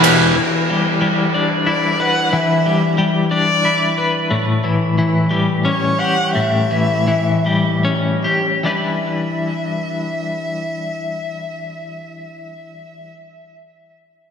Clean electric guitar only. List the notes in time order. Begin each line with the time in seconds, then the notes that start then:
Already playing: B3 D4
0.03 G4
0.36 E3
0.70 G3
1.01 G3
1.34 D4
1.67 E4
2.00 B4
2.33 E3
2.66 G3
2.98 G3
3.31 D4
3.65 E4
3.98 B4
4.31 A2
4.64 E3
4.98 E3
5.31 G3
5.65 C#4
6.00 G4
6.35 A2
6.71 E3
7.08 E3
7.46 G3
7.85 C#4
8.24 G4
8.63 E3 G3 D4 E4 B4